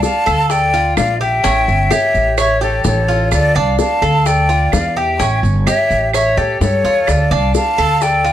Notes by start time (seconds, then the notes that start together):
Already playing: D4
0.03 F5 A5, high bongo, maracas
0.26 D2 A4, claves, maracas
0.50 D5 G5, high bongo, maracas
0.74 F4, maracas
0.97 A#1 D5 F5, high bongo, low bongo, claves, maracas
1.21 G4 E5 G5, maracas
1.44 A1 C#4, high bongo, maracas
1.68 G1, maracas
1.91 G4 C#5 E5, high bongo, claves, maracas
2.14 A1, high bongo, maracas
2.38 C#5 E5, high bongo, claves, maracas
2.61 G4 A4 C#5, high bongo, maracas
2.84 A1 A4 C#5, high bongo, low bongo, maracas
3.08 F4, high bongo, maracas
3.32 D2 A4 D5, high bongo, claves, maracas
3.55 C2 D4 F5 A5, maracas
3.79 F5 A5, high bongo, maracas
4.02 D2 A4, claves, maracas
4.26 D5 G5, high bongo, maracas
4.49 F4, maracas
4.72 E2 D5 F5, high bongo, low bongo, claves, maracas
4.96 G4 E5 G5, maracas
5.19 A1 C#4, high bongo, maracas
5.43 G1, maracas
5.67 G4 C#5 E5, high bongo, claves, maracas
5.90 A1, high bongo, maracas
6.13 C#5 E5, high bongo, claves, maracas
6.37 A2 G4 A4 C#5, high bongo, maracas
6.61 G2 A4 C#5, high bongo, low bongo, maracas
6.84 E2 F4, high bongo, maracas
7.07 D2 A4 D5, high bongo, claves, maracas
7.31 C2 D4 F5 A5, maracas
7.54 F5 A5, high bongo, maracas
7.78 D2 A4, claves, maracas
8.01 D5 G5, high bongo, maracas
8.24 F4, maracas